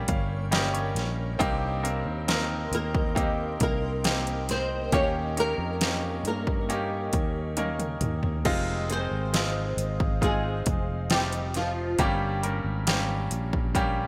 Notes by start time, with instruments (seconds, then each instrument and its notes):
Already playing: grand piano G3 A#3 C#4 D#4 F4 G4, ambient pad A#4 C#5 G5 C#6
0.08 fretless electric bass G1, grand piano F5, kick, closed hi-hat
0.51 grand piano G3 A#3 C#4 G4 D#5, snare, closed hi-hat
0.74 grand piano C#5, closed hi-hat
0.95 fretless electric bass A#1, snare, closed hi-hat
1.39 fretless electric bass C2, grand piano G2 A#3 C4 D#4 G4, ambient pad D#5 C6, kick, closed hi-hat
1.83 grand piano A#3 C4 D#4 A#4, closed hi-hat
2.05 fretless electric bass D#2
2.28 grand piano A#3 C4 D#4 A#4, snare, closed hi-hat
2.72 fretless electric bass D#2, nylon-string guitar A#3 A#4, closed hi-hat
2.95 kick
3.15 grand piano A#3 C4 D#4 G4, kick, closed hi-hat
3.60 fretless electric bass C2, nylon-string guitar A#3 A#4, kick, closed hi-hat
4.04 grand piano A#3 C4 D#4 G4, snare, closed hi-hat
4.27 closed hi-hat
4.49 nylon-string guitar C4 C5, snare, closed hi-hat
4.92 fretless electric bass D#2, grand piano A#2 A#3 C#4 D#4 G4, nylon-string guitar C#4 C#5, ambient pad C#6, kick, closed hi-hat
5.37 grand piano A#3 C#4 D#4 G4, nylon-string guitar A#3 A#4, closed hi-hat
5.58 fretless electric bass F2
5.81 grand piano A#3 C#4 D#4 G4, snare, closed hi-hat
6.24 fretless electric bass G2, nylon-string guitar A#4, closed hi-hat
6.28 nylon-string guitar A#3
6.47 kick
6.69 nylon-string guitar G3 G4, grand piano A#3 C#4 D#4 G4, closed hi-hat
7.13 fretless electric bass D#2, kick, closed hi-hat
7.57 grand piano A#3 C#4 D#4 A#4, closed hi-hat, high tom
7.79 closed hi-hat, mid tom
8.01 fretless electric bass D#2, closed hi-hat, mid tom
8.23 floor tom
8.44 fretless electric bass F1, grand piano C3 G#3 C4 D#4 F4, ambient pad C5 D#5 F5 D#6, kick, crash
8.90 grand piano G#3 C4 D#4 G#4, nylon-string guitar C4 C5, closed hi-hat
9.11 fretless electric bass G#1
9.33 grand piano G#3 C4 D#4 F4, snare, closed hi-hat
9.77 fretless electric bass G#1, closed hi-hat
10.00 kick
10.21 grand piano G#3 C4 D#4 F4, nylon-string guitar G#3 G#4, ambient pad F6, kick, closed hi-hat
10.66 fretless electric bass F1, kick, closed hi-hat
11.10 grand piano F3 C4 D#4 G4, nylon-string guitar G3 G4, snare, closed hi-hat
11.33 closed hi-hat
11.54 nylon-string guitar F3 F4, snare, closed hi-hat
11.99 fretless electric bass G1, grand piano G2 G3 A#3 C#4 G4, nylon-string guitar G3 G4, kick, closed hi-hat
12.43 grand piano G3 A#3 C#4 A#4, closed hi-hat
12.64 fretless electric bass G#1
12.87 grand piano G3 A#3 C#4 G4, snare, closed hi-hat
13.31 fretless electric bass A#1, closed hi-hat
13.53 kick
13.75 grand piano G3 A#3 C#4 G4, kick, closed hi-hat